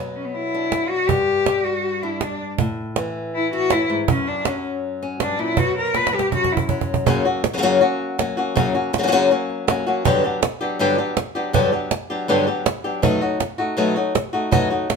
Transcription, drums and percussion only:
0, 0, Header, 1, 2, 480
1, 0, Start_track
1, 0, Tempo, 373134
1, 1409, Time_signature, 4, 2, 24, 8
1, 19246, End_track
2, 0, Start_track
2, 0, Title_t, "Cajon"
2, 686, Note_on_c, 9, 38, 31
2, 815, Note_off_c, 9, 38, 0
2, 925, Note_on_c, 9, 38, 87
2, 1054, Note_off_c, 9, 38, 0
2, 1402, Note_on_c, 9, 36, 93
2, 1531, Note_off_c, 9, 36, 0
2, 1883, Note_on_c, 9, 38, 90
2, 2012, Note_off_c, 9, 38, 0
2, 2841, Note_on_c, 9, 38, 89
2, 2969, Note_off_c, 9, 38, 0
2, 3325, Note_on_c, 9, 36, 96
2, 3453, Note_off_c, 9, 36, 0
2, 3809, Note_on_c, 9, 38, 91
2, 3938, Note_off_c, 9, 38, 0
2, 4764, Note_on_c, 9, 38, 97
2, 4893, Note_off_c, 9, 38, 0
2, 5251, Note_on_c, 9, 36, 110
2, 5379, Note_off_c, 9, 36, 0
2, 5492, Note_on_c, 9, 38, 33
2, 5620, Note_off_c, 9, 38, 0
2, 5728, Note_on_c, 9, 38, 99
2, 5857, Note_off_c, 9, 38, 0
2, 5963, Note_on_c, 9, 38, 33
2, 6092, Note_off_c, 9, 38, 0
2, 6691, Note_on_c, 9, 38, 98
2, 6820, Note_off_c, 9, 38, 0
2, 7164, Note_on_c, 9, 36, 100
2, 7293, Note_off_c, 9, 36, 0
2, 7647, Note_on_c, 9, 38, 81
2, 7775, Note_off_c, 9, 38, 0
2, 7804, Note_on_c, 9, 38, 97
2, 7933, Note_off_c, 9, 38, 0
2, 7967, Note_on_c, 9, 38, 89
2, 8095, Note_off_c, 9, 38, 0
2, 8131, Note_on_c, 9, 36, 82
2, 8260, Note_off_c, 9, 36, 0
2, 8290, Note_on_c, 9, 36, 67
2, 8418, Note_off_c, 9, 36, 0
2, 8452, Note_on_c, 9, 36, 102
2, 8580, Note_off_c, 9, 36, 0
2, 8605, Note_on_c, 9, 36, 92
2, 8734, Note_off_c, 9, 36, 0
2, 8764, Note_on_c, 9, 36, 78
2, 8893, Note_off_c, 9, 36, 0
2, 8926, Note_on_c, 9, 36, 93
2, 9055, Note_off_c, 9, 36, 0
2, 9090, Note_on_c, 9, 36, 104
2, 9218, Note_off_c, 9, 36, 0
2, 9338, Note_on_c, 9, 38, 34
2, 9467, Note_off_c, 9, 38, 0
2, 9569, Note_on_c, 9, 38, 102
2, 9698, Note_off_c, 9, 38, 0
2, 10300, Note_on_c, 9, 38, 35
2, 10429, Note_off_c, 9, 38, 0
2, 10538, Note_on_c, 9, 38, 106
2, 10666, Note_off_c, 9, 38, 0
2, 11023, Note_on_c, 9, 36, 103
2, 11151, Note_off_c, 9, 36, 0
2, 11261, Note_on_c, 9, 38, 33
2, 11390, Note_off_c, 9, 38, 0
2, 11501, Note_on_c, 9, 38, 102
2, 11629, Note_off_c, 9, 38, 0
2, 11743, Note_on_c, 9, 38, 33
2, 11872, Note_off_c, 9, 38, 0
2, 12222, Note_on_c, 9, 38, 36
2, 12350, Note_off_c, 9, 38, 0
2, 12455, Note_on_c, 9, 38, 110
2, 12584, Note_off_c, 9, 38, 0
2, 12934, Note_on_c, 9, 36, 104
2, 13062, Note_off_c, 9, 36, 0
2, 13414, Note_on_c, 9, 38, 107
2, 13542, Note_off_c, 9, 38, 0
2, 13653, Note_on_c, 9, 38, 35
2, 13781, Note_off_c, 9, 38, 0
2, 14135, Note_on_c, 9, 38, 36
2, 14263, Note_off_c, 9, 38, 0
2, 14367, Note_on_c, 9, 38, 94
2, 14495, Note_off_c, 9, 38, 0
2, 14848, Note_on_c, 9, 36, 103
2, 14977, Note_off_c, 9, 36, 0
2, 15094, Note_on_c, 9, 38, 34
2, 15223, Note_off_c, 9, 38, 0
2, 15323, Note_on_c, 9, 38, 109
2, 15451, Note_off_c, 9, 38, 0
2, 16288, Note_on_c, 9, 38, 109
2, 16416, Note_off_c, 9, 38, 0
2, 16766, Note_on_c, 9, 36, 99
2, 16894, Note_off_c, 9, 36, 0
2, 17243, Note_on_c, 9, 38, 113
2, 17372, Note_off_c, 9, 38, 0
2, 18207, Note_on_c, 9, 38, 108
2, 18336, Note_off_c, 9, 38, 0
2, 18683, Note_on_c, 9, 36, 112
2, 18812, Note_off_c, 9, 36, 0
2, 19167, Note_on_c, 9, 38, 106
2, 19246, Note_off_c, 9, 38, 0
2, 19246, End_track
0, 0, End_of_file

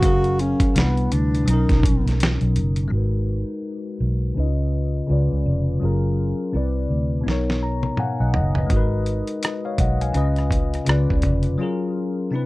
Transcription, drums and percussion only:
0, 0, Header, 1, 2, 480
1, 0, Start_track
1, 0, Tempo, 722892
1, 17, Time_signature, 4, 2, 24, 8
1, 8273, End_track
2, 0, Start_track
2, 0, Title_t, "Drums"
2, 17, Note_on_c, 9, 36, 92
2, 17, Note_on_c, 9, 42, 75
2, 84, Note_off_c, 9, 36, 0
2, 84, Note_off_c, 9, 42, 0
2, 160, Note_on_c, 9, 42, 33
2, 227, Note_off_c, 9, 42, 0
2, 261, Note_on_c, 9, 42, 62
2, 328, Note_off_c, 9, 42, 0
2, 398, Note_on_c, 9, 36, 98
2, 399, Note_on_c, 9, 42, 57
2, 465, Note_off_c, 9, 36, 0
2, 465, Note_off_c, 9, 42, 0
2, 503, Note_on_c, 9, 42, 81
2, 517, Note_on_c, 9, 38, 99
2, 570, Note_off_c, 9, 42, 0
2, 584, Note_off_c, 9, 38, 0
2, 647, Note_on_c, 9, 42, 33
2, 713, Note_off_c, 9, 42, 0
2, 741, Note_on_c, 9, 42, 72
2, 808, Note_off_c, 9, 42, 0
2, 894, Note_on_c, 9, 42, 44
2, 960, Note_off_c, 9, 42, 0
2, 980, Note_on_c, 9, 42, 75
2, 1047, Note_off_c, 9, 42, 0
2, 1124, Note_on_c, 9, 36, 87
2, 1125, Note_on_c, 9, 42, 32
2, 1139, Note_on_c, 9, 38, 34
2, 1190, Note_off_c, 9, 36, 0
2, 1191, Note_off_c, 9, 42, 0
2, 1206, Note_off_c, 9, 38, 0
2, 1218, Note_on_c, 9, 36, 94
2, 1232, Note_on_c, 9, 42, 68
2, 1284, Note_off_c, 9, 36, 0
2, 1298, Note_off_c, 9, 42, 0
2, 1378, Note_on_c, 9, 42, 42
2, 1387, Note_on_c, 9, 38, 32
2, 1445, Note_off_c, 9, 42, 0
2, 1453, Note_off_c, 9, 38, 0
2, 1463, Note_on_c, 9, 42, 74
2, 1482, Note_on_c, 9, 38, 110
2, 1529, Note_off_c, 9, 42, 0
2, 1548, Note_off_c, 9, 38, 0
2, 1600, Note_on_c, 9, 42, 30
2, 1666, Note_off_c, 9, 42, 0
2, 1699, Note_on_c, 9, 42, 64
2, 1765, Note_off_c, 9, 42, 0
2, 1833, Note_on_c, 9, 42, 47
2, 1900, Note_off_c, 9, 42, 0
2, 4835, Note_on_c, 9, 38, 46
2, 4901, Note_off_c, 9, 38, 0
2, 4979, Note_on_c, 9, 38, 46
2, 5045, Note_off_c, 9, 38, 0
2, 5199, Note_on_c, 9, 48, 48
2, 5265, Note_off_c, 9, 48, 0
2, 5294, Note_on_c, 9, 47, 60
2, 5361, Note_off_c, 9, 47, 0
2, 5536, Note_on_c, 9, 43, 81
2, 5603, Note_off_c, 9, 43, 0
2, 5678, Note_on_c, 9, 43, 65
2, 5744, Note_off_c, 9, 43, 0
2, 5776, Note_on_c, 9, 42, 55
2, 5777, Note_on_c, 9, 36, 83
2, 5843, Note_off_c, 9, 36, 0
2, 5843, Note_off_c, 9, 42, 0
2, 6017, Note_on_c, 9, 42, 49
2, 6083, Note_off_c, 9, 42, 0
2, 6158, Note_on_c, 9, 42, 48
2, 6225, Note_off_c, 9, 42, 0
2, 6259, Note_on_c, 9, 42, 79
2, 6273, Note_on_c, 9, 37, 96
2, 6326, Note_off_c, 9, 42, 0
2, 6340, Note_off_c, 9, 37, 0
2, 6496, Note_on_c, 9, 36, 80
2, 6496, Note_on_c, 9, 42, 65
2, 6562, Note_off_c, 9, 36, 0
2, 6562, Note_off_c, 9, 42, 0
2, 6649, Note_on_c, 9, 42, 42
2, 6715, Note_off_c, 9, 42, 0
2, 6735, Note_on_c, 9, 42, 54
2, 6802, Note_off_c, 9, 42, 0
2, 6881, Note_on_c, 9, 42, 31
2, 6895, Note_on_c, 9, 37, 29
2, 6947, Note_off_c, 9, 42, 0
2, 6962, Note_off_c, 9, 37, 0
2, 6976, Note_on_c, 9, 36, 72
2, 6986, Note_on_c, 9, 42, 51
2, 7043, Note_off_c, 9, 36, 0
2, 7052, Note_off_c, 9, 42, 0
2, 7129, Note_on_c, 9, 42, 41
2, 7138, Note_on_c, 9, 37, 30
2, 7196, Note_off_c, 9, 42, 0
2, 7204, Note_off_c, 9, 37, 0
2, 7214, Note_on_c, 9, 42, 67
2, 7233, Note_on_c, 9, 37, 101
2, 7280, Note_off_c, 9, 42, 0
2, 7299, Note_off_c, 9, 37, 0
2, 7372, Note_on_c, 9, 36, 78
2, 7439, Note_off_c, 9, 36, 0
2, 7450, Note_on_c, 9, 42, 50
2, 7459, Note_on_c, 9, 36, 68
2, 7516, Note_off_c, 9, 42, 0
2, 7526, Note_off_c, 9, 36, 0
2, 7588, Note_on_c, 9, 42, 39
2, 7654, Note_off_c, 9, 42, 0
2, 8273, End_track
0, 0, End_of_file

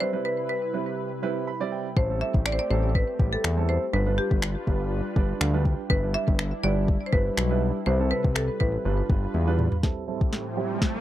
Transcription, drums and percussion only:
0, 0, Header, 1, 2, 480
1, 0, Start_track
1, 0, Time_signature, 4, 2, 24, 8
1, 0, Key_signature, 0, "minor"
1, 0, Tempo, 491803
1, 10743, End_track
2, 0, Start_track
2, 0, Title_t, "Drums"
2, 1919, Note_on_c, 9, 36, 101
2, 2016, Note_off_c, 9, 36, 0
2, 2287, Note_on_c, 9, 36, 100
2, 2384, Note_off_c, 9, 36, 0
2, 2397, Note_on_c, 9, 26, 102
2, 2495, Note_off_c, 9, 26, 0
2, 2878, Note_on_c, 9, 36, 94
2, 2976, Note_off_c, 9, 36, 0
2, 3118, Note_on_c, 9, 36, 104
2, 3215, Note_off_c, 9, 36, 0
2, 3360, Note_on_c, 9, 26, 107
2, 3458, Note_off_c, 9, 26, 0
2, 4207, Note_on_c, 9, 36, 97
2, 4305, Note_off_c, 9, 36, 0
2, 4318, Note_on_c, 9, 26, 104
2, 4415, Note_off_c, 9, 26, 0
2, 4560, Note_on_c, 9, 36, 81
2, 4658, Note_off_c, 9, 36, 0
2, 5037, Note_on_c, 9, 36, 105
2, 5135, Note_off_c, 9, 36, 0
2, 5280, Note_on_c, 9, 26, 105
2, 5377, Note_off_c, 9, 26, 0
2, 5517, Note_on_c, 9, 36, 87
2, 5615, Note_off_c, 9, 36, 0
2, 5758, Note_on_c, 9, 36, 106
2, 5855, Note_off_c, 9, 36, 0
2, 6126, Note_on_c, 9, 36, 101
2, 6224, Note_off_c, 9, 36, 0
2, 6236, Note_on_c, 9, 26, 100
2, 6334, Note_off_c, 9, 26, 0
2, 6717, Note_on_c, 9, 36, 95
2, 6815, Note_off_c, 9, 36, 0
2, 6957, Note_on_c, 9, 36, 105
2, 7054, Note_off_c, 9, 36, 0
2, 7198, Note_on_c, 9, 26, 106
2, 7296, Note_off_c, 9, 26, 0
2, 8046, Note_on_c, 9, 36, 100
2, 8144, Note_off_c, 9, 36, 0
2, 8156, Note_on_c, 9, 26, 95
2, 8254, Note_off_c, 9, 26, 0
2, 8399, Note_on_c, 9, 36, 87
2, 8497, Note_off_c, 9, 36, 0
2, 8877, Note_on_c, 9, 36, 105
2, 8975, Note_off_c, 9, 36, 0
2, 9118, Note_on_c, 9, 48, 55
2, 9215, Note_off_c, 9, 48, 0
2, 9357, Note_on_c, 9, 45, 85
2, 9455, Note_off_c, 9, 45, 0
2, 9486, Note_on_c, 9, 43, 83
2, 9583, Note_off_c, 9, 43, 0
2, 9598, Note_on_c, 9, 36, 103
2, 9598, Note_on_c, 9, 38, 50
2, 9695, Note_off_c, 9, 36, 0
2, 9696, Note_off_c, 9, 38, 0
2, 9966, Note_on_c, 9, 36, 101
2, 10064, Note_off_c, 9, 36, 0
2, 10078, Note_on_c, 9, 38, 55
2, 10176, Note_off_c, 9, 38, 0
2, 10557, Note_on_c, 9, 36, 89
2, 10557, Note_on_c, 9, 38, 60
2, 10654, Note_off_c, 9, 36, 0
2, 10655, Note_off_c, 9, 38, 0
2, 10743, End_track
0, 0, End_of_file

